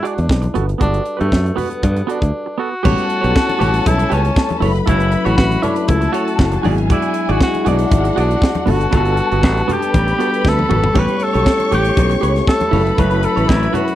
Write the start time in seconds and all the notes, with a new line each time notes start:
Already playing: G#3 D4 E4
0.03 D4 F#4 G#4 D5, closed hi-hat
0.16 E2, muted clean electric guitar stroke, closed hi-hat
0.29 B1, kick, snare
0.42 muted clean electric guitar stroke, closed hi-hat, high conga
0.54 G1 G3 B3 F#4 A4 B4, closed hi-hat, high conga
0.67 muted clean electric guitar stroke, closed hi-hat
0.78 G1 B3 D4 F#4 A4, kick, closed hi-hat, muted conga, low conga
0.94 closed hi-hat
1.04 muted clean electric guitar stroke, closed hi-hat
1.17 A3 B3 F#4 B4, closed hi-hat
1.21 G2
1.32 F#2, kick, snare
1.44 muted clean electric guitar stroke, closed hi-hat
1.56 B3 F#4 B4, open hi-hat, high conga, low conga
1.70 muted clean electric guitar stroke, closed hi-hat
1.83 G2, kick, closed hi-hat, muted conga, high conga
1.97 muted clean electric guitar stroke, closed hi-hat
2.07 B3 D4 F#4 A4, closed hi-hat
2.20 D2, muted clean electric guitar stroke, kick, closed hi-hat
2.46 muted clean electric guitar stroke
2.58 B3 F#4 A4
2.72 muted clean electric guitar stroke
2.83 A1 G3 A3 B3 C#4 E4 G4 A4 B4 C#5 A5, kick, crash, muted conga, low conga
2.98 closed hi-hat
3.10 muted clean electric guitar stroke, closed hi-hat
3.21 B1 G4 B4 C#5, closed hi-hat
3.36 kick, snare, muted conga
3.47 muted clean electric guitar stroke, closed hi-hat, muted conga
3.59 A1 G4 B4 C#5, closed hi-hat, low conga
3.73 muted clean electric guitar stroke, closed hi-hat
3.86 B1 E4, kick, closed hi-hat, muted conga, high conga
3.98 muted clean electric guitar stroke, closed hi-hat, muted conga
4.10 C#2 C#4 G4 B4 C#5, closed hi-hat
4.25 muted clean electric guitar stroke, closed hi-hat
4.36 kick, snare
4.49 muted clean electric guitar stroke, closed hi-hat, muted conga, high conga
4.60 F#1 F#3 A3 C#4 E4 A4 B4 C#5 B5, open hi-hat, high conga, low conga
4.75 muted clean electric guitar stroke, closed hi-hat
4.86 F#1 E4 A4 C#5, kick, closed hi-hat, low conga
5.00 closed hi-hat
5.12 muted clean electric guitar stroke, closed hi-hat
5.25 A1 E4 F#4 A4 C#5, closed hi-hat
5.37 A1 F#4, kick, snare, muted conga
5.50 muted clean electric guitar stroke, closed hi-hat, muted conga
5.62 D4 E4 A4 C#5, closed hi-hat, low conga
5.76 muted clean electric guitar stroke, closed hi-hat
5.88 C#2 E4 A4 A5, kick, closed hi-hat, high conga
6.01 muted clean electric guitar stroke, closed hi-hat
6.13 E4 F#4 A4 C#5, closed hi-hat
6.27 muted clean electric guitar stroke, closed hi-hat
6.39 F#1, kick, snare, muted conga
6.52 muted clean electric guitar stroke, closed hi-hat, high conga
6.63 G#1 F#3 G#3 B3 D4 E4 F#4 G#4 D5 G#5, open hi-hat, high conga, low conga
6.72 G#4
6.78 muted clean electric guitar stroke, closed hi-hat
6.90 E4 F#4 G#4 D5, kick, closed hi-hat, low conga
7.02 closed hi-hat
7.14 muted clean electric guitar stroke, closed hi-hat
7.29 G#1 F#4 G#4 D5, closed hi-hat
7.40 F#4, kick, snare
7.54 muted clean electric guitar stroke, closed hi-hat, muted conga
7.65 B1 F#4 G#4 D5 F#5, closed hi-hat, low conga
7.69 D4
7.79 muted clean electric guitar stroke, closed hi-hat
7.91 G#1, muted clean electric guitar stroke, kick, closed hi-hat, muted conga, high conga
8.04 muted clean electric guitar stroke, closed hi-hat
8.16 B1 D4 F#4 G#4 D5, closed hi-hat
8.30 muted clean electric guitar stroke, closed hi-hat
8.42 kick, snare
8.55 muted clean electric guitar stroke, closed hi-hat, muted conga, high conga
8.65 G1 G3 B3 D4 F#4 A4 B4 A5, open hi-hat, high conga, low conga
8.71 F#4
8.79 muted clean electric guitar stroke, closed hi-hat
8.91 G1 B3 F#4 A4, kick, closed hi-hat, low conga
8.97 F#4
9.05 closed hi-hat
9.17 closed hi-hat
9.31 G1 B3 F#4 A4, closed hi-hat
9.43 A1, kick, snare
9.56 muted clean electric guitar stroke, closed hi-hat
9.68 B3 F#4 A4, closed hi-hat, high conga, low conga
9.72 G4
9.82 muted clean electric guitar stroke, closed hi-hat
9.93 A1 B4 B5, kick, closed hi-hat, muted conga, high conga
10.07 muted clean electric guitar stroke, closed hi-hat
10.18 G3 B3 D4 F#4 A4, closed hi-hat
10.33 muted clean electric guitar stroke, closed hi-hat
10.45 D2 A4, kick, snare, muted conga
10.58 muted clean electric guitar stroke, high tom, high conga
10.69 G#1 B3 F#4 A4, mid tom, high conga, low conga
10.82 muted clean electric guitar stroke, floor tom
10.93 A1 G3 A3 B3 C#4 E4 G4 A4 B4 C#5 C#6, kick, splash, muted conga, low conga
10.99 B4
11.08 closed hi-hat, muted conga
11.19 muted clean electric guitar stroke, closed hi-hat
11.23 A4
11.33 B1 G4 B4 C#5, closed hi-hat
11.46 kick, snare
11.60 muted clean electric guitar stroke, closed hi-hat, muted conga
11.71 A1 G4 B4 C#5, closed hi-hat, low conga
11.85 closed hi-hat
11.97 B1, kick, closed hi-hat, high conga
12.10 muted clean electric guitar stroke, closed hi-hat, muted conga
12.21 C#2 G4 B4 C#5, closed hi-hat
12.35 muted clean electric guitar stroke, snare, closed hi-hat
12.47 A4, kick, snare, muted conga
12.60 muted clean electric guitar stroke, closed hi-hat, high conga
12.71 F#1 F#3 A3 C#4 E4 G4 A4 B4 C#5 B5, open hi-hat, high conga, low conga
12.80 A4
12.85 muted clean electric guitar stroke, closed hi-hat
12.97 F#1 E4 A4 B4 C#5, kick, closed hi-hat, muted conga, low conga
13.11 closed hi-hat
13.23 A4, closed hi-hat
13.36 A1 E4 A4 C#5, closed hi-hat
13.49 A1 E4, kick, snare
13.62 muted clean electric guitar stroke, closed hi-hat
13.73 E4 F#4 A4 C#5, closed hi-hat, low conga
13.87 muted clean electric guitar stroke, closed hi-hat